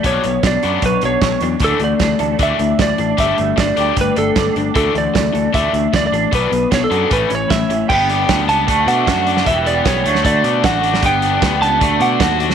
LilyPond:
<<
  \new Staff \with { instrumentName = "Lead electric guitar" } { \time 4/4 \key d \major \tempo 4 = 153 cis''4 d''4 b'8 cis''4 r8 | a'8 d''4. e''4 d''4 | e''4 d''4 b'8 a'4 r8 | a'8 d''4. e''4 d''16 d''8. |
b'4 cis''16 a'8. b'8 cis''8 e''4 | g''4. a''4 fis''4. | e''8 d''8 cis''4 d''4 fis''4 | g''4. a''4 fis''4 r8 | }
  \new Staff \with { instrumentName = "Analog synth pad" } { \time 4/4 \key d \major << { r1 | r1 | r1 | r1 |
r1 | r1 | r1 | d''1 | } \\ { r1 | r1 | r1 | r1 |
r1 | r1 | r1 | <b g'>2 <a fis'>2 | } >> }
  \new Staff \with { instrumentName = "Clean electric guitar" } { \time 4/4 \key d \major b,8 b8 d'8 fis'8 cis''8 d'8 cis''8 d'8 | d8 a8 d'8 a'8 d''8 d'8 d''8 d'8 | g8 a8 d'8 g'8 d''8 d'8 d''8 d'8 | d8 a8 d'8 a'8 d''8 d'8 d''8 d'8 |
b,8 b8 d'8 fis'8 a,8 cis'8 e'8 cis'8 | <g, d g b d' g'>2 <d a d' fis'>2 | <e, b, e g b g'>4. <d a d' fis'>2~ <d a d' fis'>8 | <g, d g b d' g'>2 <d a d' fis'>2 | }
  \new Staff \with { instrumentName = "Overdriven electric guitar" } { \time 4/4 \key d \major <fis b d'>8 <fis b>8 <fis b>8 <fis b d'>8 <fis b>8 <fis b>8 <fis b>8 <fis b>8 | <e a d'>8 <e a>8 <e a>8 <e a>8 <e a d'>8 <e a>8 <e a>8 <e a>8 | <a d' g'>8 <a d'>8 <a d'>8 <a d' g'>8 <a d'>8 <a d'>8 <a d'>8 <a d'>8 | <e a d'>8 <e a>8 <e a>8 <e a>8 <e a d'>8 <e a>8 <e a>8 <e a>8 |
<fis b d'>8 <fis b>8 <fis b>8 <fis b d'>8 <e a cis'>8 <e a>8 <e a>8 <e a>8 | b8 d'8 b8 b8 a8 d'8 fis'8 d'8 | e8 b8 b8 a8 a8 d'8 fis'8 d'8 | b8 d'8 b8 b8 a8 d'8 fis'8 d'8 | }
  \new Staff \with { instrumentName = "Picked electric bass" } { \clef bass \time 4/4 \key d \major b,,8 b,,8 b,,8 fis,8 b,,8 b,,8 b,,8 e,8 | d,8 d,8 d,8 d,8 d,8 d,8 d,8 a,,8 | g,,8 g,,8 g,,8 d,8 g,,8 g,,8 g,,8 g,,8 | d,8 d,8 d,8 d,8 d,8 d,8 d,8 a,,8 |
b,,8 b,,8 b,,8 fis,8 a,,8 a,,8 a,,8 a,,8 | g,,4 d,8 cis,8 d,8 b,8 fis,4 | e,,4 b,,8 d,8 d,8 b,8 a,,4 | g,,4 d,8 cis,8 d,8 b,8 ees,4 | }
  \new DrumStaff \with { instrumentName = "Drums" } \drummode { \time 4/4 <hh bd>8 hh8 <hh bd sn>8 hh8 <hh bd>8 hh8 <hh bd sn>8 hh8 | <hh bd>8 hh8 <hh bd sn>8 hh8 <hh bd>8 hh8 <hh bd sn>8 hh8 | <hh bd>8 hh8 <hh bd sn>8 hh8 <hh bd>8 hh8 <hh bd sn>8 hh8 | <hh bd>8 hh8 <hh bd sn>8 hh8 <hh bd>8 hh8 <hh bd sn>8 hh8 |
<hh bd>8 hh8 <hh bd sn>8 hh8 <hh bd>8 hh8 <hh bd sn>8 hh8 | <cymc bd>8 hh8 <hh bd sn>8 hh8 <hh bd>8 hh8 <hh bd sn>8 hh16 sn16 | <hh bd>8 hh8 <hh bd sn>8 hh16 sn16 <hh bd>8 hh8 <hh bd sn>8 hh16 sn16 | <hh bd>8 hh8 <hh bd sn>8 hh8 <hh bd>8 hh8 <hh bd sn>8 hh16 sn16 | }
>>